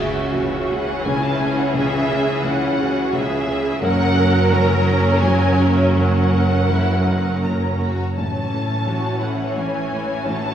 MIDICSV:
0, 0, Header, 1, 7, 480
1, 0, Start_track
1, 0, Key_signature, 4, "minor"
1, 0, Tempo, 696864
1, 1203, Time_signature, 3, 2, 24, 8
1, 3589, Tempo, 736196
1, 5509, Tempo, 694444
1, 7159, End_track
2, 0, Start_track
2, 0, Title_t, "Violin section"
2, 0, Program_c, 0, 48
2, 0, Note_on_c, 0, 76, 81
2, 481, Note_on_c, 0, 78, 93
2, 483, Note_off_c, 0, 76, 0
2, 715, Note_on_c, 0, 80, 92
2, 724, Note_off_c, 0, 78, 0
2, 840, Note_off_c, 0, 80, 0
2, 847, Note_on_c, 0, 81, 91
2, 960, Note_on_c, 0, 80, 100
2, 964, Note_off_c, 0, 81, 0
2, 1081, Note_off_c, 0, 80, 0
2, 1084, Note_on_c, 0, 78, 82
2, 1201, Note_on_c, 0, 76, 111
2, 1204, Note_off_c, 0, 78, 0
2, 1674, Note_off_c, 0, 76, 0
2, 1686, Note_on_c, 0, 78, 101
2, 2154, Note_off_c, 0, 78, 0
2, 2169, Note_on_c, 0, 76, 97
2, 2624, Note_on_c, 0, 78, 127
2, 2631, Note_off_c, 0, 76, 0
2, 3097, Note_off_c, 0, 78, 0
2, 3111, Note_on_c, 0, 82, 110
2, 3592, Note_off_c, 0, 82, 0
2, 3592, Note_on_c, 0, 80, 96
2, 3945, Note_off_c, 0, 80, 0
2, 3949, Note_on_c, 0, 76, 75
2, 4058, Note_on_c, 0, 78, 106
2, 4067, Note_off_c, 0, 76, 0
2, 5009, Note_off_c, 0, 78, 0
2, 5034, Note_on_c, 0, 82, 81
2, 5511, Note_off_c, 0, 82, 0
2, 5511, Note_on_c, 0, 81, 93
2, 6224, Note_off_c, 0, 81, 0
2, 6233, Note_on_c, 0, 78, 77
2, 6475, Note_off_c, 0, 78, 0
2, 6478, Note_on_c, 0, 80, 77
2, 6948, Note_on_c, 0, 81, 98
2, 6951, Note_off_c, 0, 80, 0
2, 7159, Note_off_c, 0, 81, 0
2, 7159, End_track
3, 0, Start_track
3, 0, Title_t, "Cello section"
3, 0, Program_c, 1, 48
3, 0, Note_on_c, 1, 66, 85
3, 698, Note_off_c, 1, 66, 0
3, 731, Note_on_c, 1, 64, 66
3, 1205, Note_off_c, 1, 64, 0
3, 1207, Note_on_c, 1, 68, 76
3, 1442, Note_off_c, 1, 68, 0
3, 1454, Note_on_c, 1, 68, 78
3, 1685, Note_off_c, 1, 68, 0
3, 1699, Note_on_c, 1, 64, 75
3, 1928, Note_off_c, 1, 64, 0
3, 1933, Note_on_c, 1, 66, 73
3, 2160, Note_off_c, 1, 66, 0
3, 2162, Note_on_c, 1, 68, 84
3, 2627, Note_off_c, 1, 68, 0
3, 2635, Note_on_c, 1, 70, 101
3, 3577, Note_off_c, 1, 70, 0
3, 3596, Note_on_c, 1, 66, 78
3, 4068, Note_off_c, 1, 66, 0
3, 4074, Note_on_c, 1, 70, 70
3, 5252, Note_off_c, 1, 70, 0
3, 6004, Note_on_c, 1, 66, 67
3, 6224, Note_off_c, 1, 66, 0
3, 6237, Note_on_c, 1, 64, 54
3, 6951, Note_off_c, 1, 64, 0
3, 6953, Note_on_c, 1, 66, 60
3, 7159, Note_off_c, 1, 66, 0
3, 7159, End_track
4, 0, Start_track
4, 0, Title_t, "Violin section"
4, 0, Program_c, 2, 48
4, 0, Note_on_c, 2, 61, 75
4, 0, Note_on_c, 2, 68, 69
4, 2597, Note_off_c, 2, 61, 0
4, 2597, Note_off_c, 2, 68, 0
4, 2631, Note_on_c, 2, 61, 94
4, 2633, Note_on_c, 2, 70, 85
4, 4479, Note_off_c, 2, 61, 0
4, 4505, Note_off_c, 2, 70, 0
4, 4549, Note_on_c, 2, 64, 75
4, 4774, Note_off_c, 2, 64, 0
4, 4800, Note_on_c, 2, 63, 60
4, 5036, Note_off_c, 2, 63, 0
4, 5037, Note_on_c, 2, 61, 54
4, 5274, Note_off_c, 2, 61, 0
4, 5276, Note_on_c, 2, 66, 61
4, 5512, Note_off_c, 2, 66, 0
4, 5514, Note_on_c, 2, 73, 63
4, 5516, Note_on_c, 2, 61, 61
4, 7159, Note_off_c, 2, 61, 0
4, 7159, Note_off_c, 2, 73, 0
4, 7159, End_track
5, 0, Start_track
5, 0, Title_t, "Viola section"
5, 0, Program_c, 3, 48
5, 0, Note_on_c, 3, 52, 77
5, 0, Note_on_c, 3, 61, 71
5, 2595, Note_off_c, 3, 52, 0
5, 2596, Note_off_c, 3, 61, 0
5, 2623, Note_on_c, 3, 54, 85
5, 2623, Note_on_c, 3, 61, 83
5, 5350, Note_off_c, 3, 54, 0
5, 5350, Note_off_c, 3, 61, 0
5, 5508, Note_on_c, 3, 61, 56
5, 5509, Note_on_c, 3, 52, 63
5, 7159, Note_off_c, 3, 52, 0
5, 7159, Note_off_c, 3, 61, 0
5, 7159, End_track
6, 0, Start_track
6, 0, Title_t, "Felt piano"
6, 0, Program_c, 4, 0
6, 0, Control_c, 4, 64, 127
6, 0, Note_on_c, 4, 37, 68
6, 0, Note_on_c, 4, 49, 59
6, 0, Note_on_c, 4, 56, 44
6, 0, Note_on_c, 4, 61, 48
6, 0, Note_on_c, 4, 68, 50
6, 211, Note_off_c, 4, 56, 0
6, 212, Note_off_c, 4, 68, 0
6, 213, Note_off_c, 4, 61, 0
6, 236, Note_off_c, 4, 37, 0
6, 236, Note_on_c, 4, 37, 58
6, 237, Note_off_c, 4, 49, 0
6, 237, Note_on_c, 4, 49, 58
6, 476, Note_off_c, 4, 37, 0
6, 477, Note_off_c, 4, 49, 0
6, 486, Note_on_c, 4, 56, 46
6, 491, Note_on_c, 4, 61, 54
6, 494, Note_on_c, 4, 68, 47
6, 703, Note_off_c, 4, 56, 0
6, 705, Note_off_c, 4, 61, 0
6, 707, Note_off_c, 4, 68, 0
6, 727, Note_on_c, 4, 37, 62
6, 729, Note_on_c, 4, 49, 65
6, 957, Note_off_c, 4, 37, 0
6, 958, Note_off_c, 4, 49, 0
6, 963, Note_on_c, 4, 56, 42
6, 968, Note_on_c, 4, 61, 42
6, 969, Note_on_c, 4, 68, 48
6, 1179, Note_off_c, 4, 56, 0
6, 1181, Note_off_c, 4, 61, 0
6, 1182, Note_off_c, 4, 68, 0
6, 1196, Note_on_c, 4, 49, 60
6, 1198, Note_on_c, 4, 37, 77
6, 1215, Control_c, 4, 64, 0
6, 1346, Control_c, 4, 64, 127
6, 1434, Note_off_c, 4, 49, 0
6, 1435, Note_off_c, 4, 37, 0
6, 1442, Note_on_c, 4, 56, 47
6, 1444, Note_on_c, 4, 61, 46
6, 1445, Note_on_c, 4, 68, 49
6, 1659, Note_off_c, 4, 56, 0
6, 1661, Note_off_c, 4, 61, 0
6, 1661, Note_off_c, 4, 68, 0
6, 1675, Note_on_c, 4, 37, 57
6, 1681, Note_on_c, 4, 49, 64
6, 1909, Note_off_c, 4, 37, 0
6, 1912, Note_off_c, 4, 49, 0
6, 1913, Note_on_c, 4, 56, 51
6, 1916, Note_on_c, 4, 61, 55
6, 1920, Note_on_c, 4, 68, 61
6, 2126, Note_off_c, 4, 56, 0
6, 2127, Note_off_c, 4, 61, 0
6, 2130, Note_off_c, 4, 68, 0
6, 2155, Note_on_c, 4, 37, 77
6, 2156, Note_on_c, 4, 49, 71
6, 2380, Note_off_c, 4, 37, 0
6, 2381, Note_off_c, 4, 49, 0
6, 2390, Note_on_c, 4, 56, 53
6, 2394, Note_on_c, 4, 61, 51
6, 2396, Note_on_c, 4, 68, 58
6, 2602, Note_off_c, 4, 56, 0
6, 2603, Note_off_c, 4, 61, 0
6, 2605, Note_off_c, 4, 68, 0
6, 2631, Note_on_c, 4, 30, 78
6, 2633, Note_on_c, 4, 42, 92
6, 2637, Control_c, 4, 64, 0
6, 2763, Control_c, 4, 64, 127
6, 2861, Note_off_c, 4, 30, 0
6, 2861, Note_off_c, 4, 42, 0
6, 2871, Note_on_c, 4, 58, 54
6, 2873, Note_on_c, 4, 61, 54
6, 2875, Note_on_c, 4, 66, 57
6, 3086, Note_off_c, 4, 58, 0
6, 3087, Note_off_c, 4, 61, 0
6, 3088, Note_off_c, 4, 66, 0
6, 3115, Note_on_c, 4, 42, 71
6, 3116, Note_on_c, 4, 30, 68
6, 3345, Note_off_c, 4, 42, 0
6, 3346, Note_off_c, 4, 30, 0
6, 3360, Note_on_c, 4, 58, 57
6, 3365, Note_on_c, 4, 61, 53
6, 3367, Note_on_c, 4, 66, 61
6, 3573, Note_off_c, 4, 58, 0
6, 3575, Note_off_c, 4, 61, 0
6, 3576, Note_off_c, 4, 66, 0
6, 3598, Note_on_c, 4, 30, 69
6, 3598, Note_on_c, 4, 42, 64
6, 3822, Note_off_c, 4, 30, 0
6, 3822, Note_off_c, 4, 42, 0
6, 3841, Note_on_c, 4, 58, 41
6, 3843, Note_on_c, 4, 61, 47
6, 3843, Note_on_c, 4, 66, 43
6, 4050, Note_off_c, 4, 58, 0
6, 4051, Note_off_c, 4, 61, 0
6, 4051, Note_off_c, 4, 66, 0
6, 4072, Note_on_c, 4, 30, 58
6, 4075, Note_on_c, 4, 42, 62
6, 4077, Control_c, 4, 64, 0
6, 4172, Control_c, 4, 64, 127
6, 4303, Note_off_c, 4, 30, 0
6, 4305, Note_off_c, 4, 42, 0
6, 4319, Note_on_c, 4, 58, 38
6, 4320, Note_on_c, 4, 66, 44
6, 4322, Note_on_c, 4, 61, 42
6, 4531, Note_off_c, 4, 58, 0
6, 4532, Note_off_c, 4, 66, 0
6, 4533, Note_off_c, 4, 61, 0
6, 4562, Note_on_c, 4, 30, 52
6, 4562, Note_on_c, 4, 42, 53
6, 4791, Note_off_c, 4, 30, 0
6, 4791, Note_off_c, 4, 42, 0
6, 4802, Note_on_c, 4, 58, 38
6, 4806, Note_on_c, 4, 61, 37
6, 4813, Note_on_c, 4, 66, 44
6, 5013, Note_off_c, 4, 58, 0
6, 5016, Note_off_c, 4, 61, 0
6, 5019, Note_off_c, 4, 66, 0
6, 5042, Note_on_c, 4, 42, 51
6, 5048, Note_on_c, 4, 30, 50
6, 5270, Note_off_c, 4, 42, 0
6, 5273, Note_off_c, 4, 30, 0
6, 5283, Note_on_c, 4, 58, 34
6, 5284, Note_on_c, 4, 61, 32
6, 5289, Note_on_c, 4, 66, 37
6, 5492, Note_off_c, 4, 58, 0
6, 5493, Note_off_c, 4, 61, 0
6, 5496, Note_off_c, 4, 66, 0
6, 5522, Note_on_c, 4, 33, 54
6, 5523, Control_c, 4, 64, 0
6, 5525, Note_on_c, 4, 45, 60
6, 5627, Control_c, 4, 64, 127
6, 5756, Note_off_c, 4, 33, 0
6, 5757, Note_off_c, 4, 45, 0
6, 5770, Note_on_c, 4, 57, 43
6, 5773, Note_on_c, 4, 61, 38
6, 5775, Note_on_c, 4, 64, 44
6, 5982, Note_off_c, 4, 57, 0
6, 5984, Note_off_c, 4, 61, 0
6, 5984, Note_off_c, 4, 64, 0
6, 6000, Note_on_c, 4, 45, 51
6, 6005, Note_on_c, 4, 33, 56
6, 6231, Note_off_c, 4, 45, 0
6, 6234, Note_off_c, 4, 33, 0
6, 6241, Note_on_c, 4, 57, 47
6, 6245, Note_on_c, 4, 61, 39
6, 6248, Note_on_c, 4, 64, 42
6, 6455, Note_off_c, 4, 57, 0
6, 6458, Note_off_c, 4, 61, 0
6, 6459, Note_off_c, 4, 64, 0
6, 6484, Note_on_c, 4, 45, 51
6, 6486, Note_on_c, 4, 33, 54
6, 6711, Note_off_c, 4, 45, 0
6, 6712, Note_off_c, 4, 33, 0
6, 6720, Note_on_c, 4, 57, 38
6, 6726, Note_on_c, 4, 61, 34
6, 6726, Note_on_c, 4, 64, 43
6, 6930, Note_off_c, 4, 57, 0
6, 6933, Note_off_c, 4, 61, 0
6, 6934, Note_off_c, 4, 64, 0
6, 6958, Note_on_c, 4, 33, 57
6, 6959, Note_on_c, 4, 45, 64
6, 6964, Control_c, 4, 64, 0
6, 7085, Control_c, 4, 64, 127
6, 7159, Note_off_c, 4, 33, 0
6, 7159, Note_off_c, 4, 45, 0
6, 7159, End_track
7, 0, Start_track
7, 0, Title_t, "Double bass section"
7, 0, Program_c, 5, 48
7, 0, Note_on_c, 5, 37, 70
7, 2596, Note_off_c, 5, 37, 0
7, 2623, Note_on_c, 5, 30, 90
7, 5350, Note_off_c, 5, 30, 0
7, 5512, Note_on_c, 5, 33, 65
7, 7159, Note_off_c, 5, 33, 0
7, 7159, End_track
0, 0, End_of_file